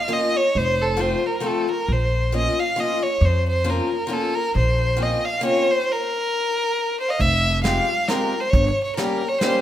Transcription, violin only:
0.00 0.15 F5 medium
0.13 0.38 D#5 medium
0.36 0.59 C#5 medium
0.57 0.83 C5 medium
0.82 1.02 A4 medium
1.00 1.28 C5 medium
1.26 1.48 A#4 medium
1.47 1.69 A4 medium
1.71 1.94 A#4 medium
1.92 2.35 C5 medium
2.37 2.61 D#5 medium
2.60 2.81 F5 medium
2.80 3.04 D#5 medium
3.03 3.26 C#5 medium
3.25 3.46 C5 medium
3.49 3.71 C5 medium
3.70 4.15 A#4 medium
4.13 4.36 A4 medium
4.35 4.55 A#4 medium
4.57 5.04 C5 medium
5.03 5.27 D#5 medium
5.25 5.45 F5 medium
5.46 5.73 C#5 medium
5.71 5.93 C5 medium
5.92 7.00 A#4 medium
7.00 7.10 C5 medium
7.08 7.22 D#5 medium
7.08 7.12 F5 soft
7.21 7.63 E5 medium
7.64 8.10 F5 medium
8.08 8.42 A#4 medium
8.40 8.52 C5 medium
8.50 8.83 C#5 medium
8.84 8.95 C#5 medium
8.97 9.30 A#4 medium
9.29 9.40 C#5 medium
9.39 9.61 C5 medium

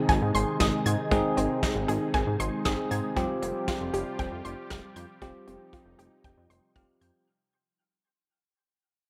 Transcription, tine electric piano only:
0.00 1.07 C4 medium
0.00 1.07 D#4 medium
0.00 1.07 G#4 medium
1.11 2.62 C4 medium
1.11 2.62 D#4 medium
1.11 2.62 G#4 medium
2.65 3.15 C4 medium
2.65 3.17 D#4 soft
2.65 3.17 G#4 medium
3.16 5.18 C4 medium
3.16 5.18 F4 medium
3.16 5.18 G4 medium
5.22 6.73 C4 medium
5.22 6.73 F4 medium
5.22 6.73 G4 medium
6.76 7.27 C4 medium
6.76 7.27 F4 soft
6.76 7.27 G4 medium

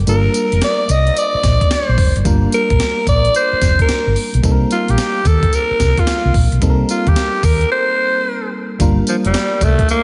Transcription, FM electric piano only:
0.06 2.21 G3 medium
0.06 2.21 A#3 medium
0.06 2.22 D4 medium
0.06 2.22 F4 medium
0.06 2.22 A#4 medium
2.24 4.39 G3 medium
2.24 4.39 A#3 medium
2.24 4.40 D4 medium
2.24 4.40 F4 medium
2.24 4.40 A#4 medium
4.43 6.57 G3 medium
4.43 6.58 A#3 medium
4.43 6.58 C4 medium
4.43 6.58 D#4 medium
4.43 4.53 A4 medium
4.52 6.62 A#4 medium
6.61 8.76 G3 medium
6.61 8.76 A#3 medium
6.61 8.76 C4 medium
6.61 8.76 D#4 medium
6.61 6.71 A4 medium
6.70 8.80 A#4 medium
8.79 10.03 G3 medium
8.79 10.03 A#3 medium
8.79 10.03 D4 medium
8.79 10.03 F4 medium
8.79 10.03 A#4 medium

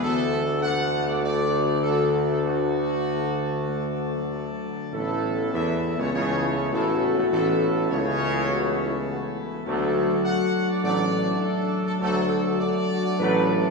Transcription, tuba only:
0.02 4.57 D2 loud
4.93 5.50 A1 loud
5.54 5.95 E2 loud
5.99 6.12 C#2 loud
6.14 6.69 C#2 loud
6.72 7.14 A1 loud
7.17 7.24 A1 loud
7.32 7.87 A1 loud
7.91 9.34 C#2 loud
9.67 10.15 D2 loud
10.83 11.32 A1 loud
12.01 12.51 D2 loud
13.20 13.68 A1 loud

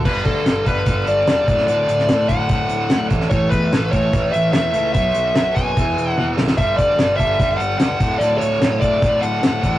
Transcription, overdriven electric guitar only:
0.04 0.44 G2 medium
0.04 0.44 D3 medium
0.04 0.45 G3 loud
0.45 0.64 G2 medium
0.45 0.65 D3 medium
0.45 0.65 G3 medium
0.65 0.84 G2 medium
0.65 0.85 D3 medium
0.65 0.86 G3 medium
0.86 1.26 G2 medium
0.86 1.27 D3 medium
0.86 1.27 G3 medium
1.27 1.46 G2 medium
1.27 1.47 D3 medium
1.27 1.47 G3 medium
1.47 1.66 D2 medium
1.47 1.67 A2 medium
1.47 1.67 D3 medium
1.67 2.08 D2 medium
1.67 2.09 A2 medium
1.67 2.09 D3 medium
2.09 2.28 D2 medium
2.09 2.29 A2 medium
2.09 2.30 D3 medium
2.29 2.49 D2 medium
2.29 2.49 A2 medium
2.29 2.50 D3 medium
2.50 2.89 D2 medium
2.50 2.90 A2 medium
2.50 2.91 D3 medium
2.91 3.10 D2 medium
2.91 3.11 A2 medium
2.91 3.11 D3 medium
3.11 3.30 D2 medium
3.11 3.30 A2 medium
3.11 3.31 D3 medium
3.31 3.70 A2 medium
3.31 3.71 E3 medium
3.31 3.72 A3 loud
3.72 3.91 A2 medium
3.72 3.92 E3 medium
3.72 3.92 A3 medium
3.92 4.12 A2 medium
3.92 4.12 E3 medium
3.92 4.13 A3 medium
4.13 4.52 A2 medium
4.13 4.52 E3 medium
4.13 4.53 A3 medium
4.53 4.73 A2 medium
4.53 4.73 E3 medium
4.53 4.74 A3 medium
4.74 4.93 A2 medium
4.74 4.93 E3 medium
4.74 4.94 A3 medium
4.94 5.34 B2 medium
4.94 5.35 F#3 medium
4.94 5.36 B3 loud
5.35 5.54 B2 medium
5.35 5.55 F#3 medium
5.35 5.55 B3 medium
5.55 5.75 B2 medium
5.55 5.75 F#3 medium
5.55 5.75 B3 medium
5.76 6.16 E2 medium
5.76 6.16 B2 medium
5.76 6.17 E3 loud
6.17 6.36 E2 medium
6.17 6.36 B2 medium
6.17 6.37 E3 medium
6.37 6.56 E2 medium
6.37 6.56 B2 medium
6.37 6.57 E3 medium
6.57 6.97 G2 medium
6.57 6.98 D3 medium
6.57 6.98 G3 medium
6.98 7.17 G2 medium
6.98 7.18 D3 medium
6.98 7.19 G3 medium
7.19 7.37 G2 medium
7.19 7.38 D3 medium
7.19 7.39 G3 medium
7.38 7.78 G2 medium
7.38 7.79 D3 medium
7.38 7.79 G3 loud
7.79 7.99 G2 medium
7.79 7.99 D3 medium
7.79 7.99 G3 medium
8.00 8.18 D2 medium
8.00 8.19 A2 medium
8.00 8.20 D3 medium
8.19 8.59 D2 medium
8.19 8.60 A2 medium
8.19 8.60 D3 loud
8.60 8.80 D2 medium
8.60 8.80 A2 medium
8.60 8.81 D3 medium
8.81 9.00 D2 medium
8.81 9.01 A2 medium
8.81 9.02 D3 medium
9.01 9.42 D2 medium
9.01 9.43 A2 medium
9.01 9.43 D3 medium
9.43 9.62 D2 medium
9.43 9.62 A2 medium
9.43 9.63 D3 medium
9.63 9.79 D2 medium
9.63 9.79 A2 medium
9.63 9.79 D3 medium

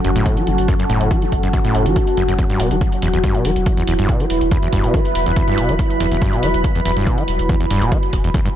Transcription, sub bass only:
0.05 0.15 F#1 loud
0.16 0.26 F#1 medium
0.47 0.58 F#1 loud
0.58 0.68 F#1 medium
0.90 1.00 F#1 medium
1.01 1.11 F#1 medium
1.32 1.43 F#1 loud
1.43 1.53 F#1 medium
1.75 1.85 F#1 loud
1.86 1.96 F#1 medium
2.17 2.28 F#1 loud
2.29 2.38 F#1 medium
2.60 2.71 E1 medium
2.71 2.81 E1 medium
3.03 3.13 E1 loud
3.14 3.24 E1 medium
3.45 3.56 E1 loud
3.56 3.66 E1 medium
3.88 3.98 E1 loud
3.99 4.09 E1 medium
4.30 4.41 E1 medium
4.41 4.51 E1 medium
4.73 4.83 E1 loud
4.84 4.94 E1 medium
5.15 5.26 E1 loud
5.27 5.36 E1 medium
5.58 5.68 E1 loud
5.69 5.79 E1 medium
6.00 6.11 E1 loud
6.12 6.22 E1 medium
6.43 6.54 E1 loud
6.54 6.64 E1 medium
6.86 6.96 E1 loud
6.97 7.07 E1 medium
7.28 7.39 E1 loud
7.39 7.49 E1 medium
7.71 7.81 E1 loud
7.82 7.92 E1 medium
8.13 8.24 E1 loud
8.24 8.34 E1 medium

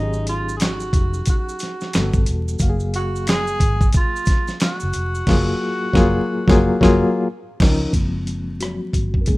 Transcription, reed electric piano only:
0.00 1.89 F#3 medium
0.00 1.90 C#4 medium
0.00 1.90 D#4 medium
0.00 1.95 G4 medium
0.00 1.94 G#4 medium
1.94 2.60 G3 medium
1.94 2.61 B3 medium
1.94 2.61 F#4 medium
1.94 2.61 A4 medium
2.60 5.23 F#3 medium
2.60 5.23 A#3 medium
2.60 2.70 F#4 medium
2.60 5.24 F5 medium
2.69 5.27 G#4 medium
5.27 5.51 F#3 loud
5.27 5.52 A#3 medium
5.27 5.52 F4 medium
5.27 5.53 G#4 loud
5.94 6.18 F#3 loud
5.94 6.18 A#3 loud
5.94 6.19 F4 medium
5.94 6.19 G#4 loud
6.48 6.69 F#3 medium
6.48 6.69 A#3 loud
6.48 6.70 F4 medium
6.48 6.71 G#4 loud
6.81 7.02 F#3 loud
6.81 7.03 A#3 loud
6.81 7.03 F4 medium
6.81 7.04 G#4 medium
7.61 7.85 F3 medium
7.61 7.85 C#4 medium
7.61 7.85 D#4 medium
7.61 7.85 A#4 loud
7.94 8.41 F3 soft
7.94 8.41 G#3 soft
7.94 8.42 A#3 soft
7.94 8.42 C4 medium
8.60 9.19 F#3 medium
8.60 9.18 F#4 medium
9.21 9.27 A#4 medium
9.27 9.38 D#3 soft
9.27 9.38 G#3 medium
9.27 9.38 A#3 soft
9.27 9.38 C#4 soft
9.27 9.38 G#4 medium

